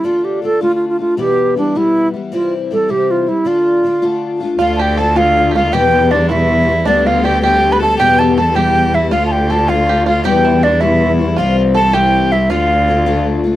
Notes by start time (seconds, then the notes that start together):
0.04 D3 A3 D4 F4
0.25 G4
0.42 D3 A3 D4 F4 A4
0.61 D3 A3 D4 F4
0.75 F4
0.89 F4
0.99 A3 D4 F4
1.17 E2 B2 E3 G3 B3 E4 G4
1.56 E3 G3 B3 D4 E4
1.75 E2 B2 E3 G3 B3 E4
2.14 E3 G3 B3 E4
2.32 C3 E3 G3 C4 E4 F4
2.71 E3 G3 C4 E4 A4
2.88 C3 E3 G3 C4 E4 G4
3.11 F4
3.26 G3 C4 E4
3.45 D3 A3 D4 F4
3.84 D3 A3 D4 F4
4.02 D3 A3 D4 F4
4.40 A3 D4 F4
4.59 D2 D3 A3 D4 F4 F5
4.76 G4 A5
4.80 G4 G5
4.97 D3 A3 D4 F4 A4 A5
5.16 D3 A3 D4 F4 F5
5.51 F4 G4
5.56 A3 D4 F4 F5
5.72 E2 B2 E3 G3 B3 G4 G5
6.11 E3 G3 B3 D4 G4 D5
6.29 E2 B2 E3 G3 B3 E4 G4 E5
6.67 E3 G3 B3 G4
6.85 D2 D3 G3 B3 D4 G4 D5
7.07 F4 F5
7.24 D3 G3 B3 G4 G5
7.42 D3 G3 B3 G4 G5
7.72 B4 B5
7.79 B3 G4 A4 A5
7.84 G3
7.98 E2 B2 E3 G3 B3 G4 G5
8.19 A4 A5
8.37 E3 G3 B3 G4 A4 A5
8.55 E2 B2 E3 G3 B3 G4 G5
8.94 E3 G3 B3 E4 G4 E5
9.11 D2 D3 A3 D4 F4 F5
9.26 A5
9.31 G4 G5
9.50 D3 A3 D4 F4 A4 A5
9.68 D3 A3 D4 F4 F5
9.89 G4
10.06 A3 D4 F4 F5
10.24 E2 B2 E3 G3 B3 E4 G4 G5
10.45 E4
10.63 E3 G3 B3 D4 E4 D5
10.80 E2 B2 E3 G3 B3 E4 E5
11.19 E3 G3 B3 E4
11.36 C2 C3 E3 G3 C4 E4 F4 F5
11.74 E3 G3 C4 E4 A4 A5
11.93 C3 E3 G3 C4 E4 G4 G5
12.31 G3 C4 E4 E5
12.50 D2 D3 A3 D4 F4 F5
12.88 D3 A3 D4 F4
13.06 D3 A3 D4 F4
13.44 A3 D4 F4